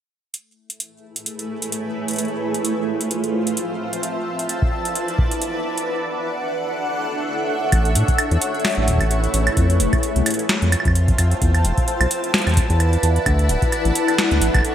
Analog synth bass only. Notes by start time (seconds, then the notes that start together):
7.72 A1
7.95 A2
8.31 E2
8.78 A1
9.01 A1
9.34 A1
9.57 F2
9.80 F1
10.16 C2
10.62 F2
10.85 F2
11.19 F2
11.42 E2
11.65 E1
12.01 B1
12.47 E2
12.70 E2
13.03 E2
13.26 D2
13.49 D1
13.85 A1
14.31 D2
14.42 A1
14.54 A1